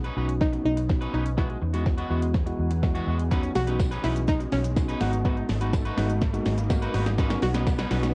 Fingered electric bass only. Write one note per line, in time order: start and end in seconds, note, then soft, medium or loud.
0.17 0.57 B1 medium
0.65 1.06 B1 medium
1.14 1.54 B1 medium
1.62 2.03 E2 medium
2.10 2.51 E2 medium
2.59 3.00 E2 medium
3.07 3.48 E2 medium
3.55 3.96 B1 medium
4.04 4.45 B1 medium
4.52 4.93 B1 medium
5.01 5.41 G#1 medium
5.49 5.90 G#1 medium
5.97 6.38 G#1 medium
6.46 6.87 G#1 loud
6.94 7.35 G#1 loud
7.43 7.83 B1 medium
7.91 8.14 B1 medium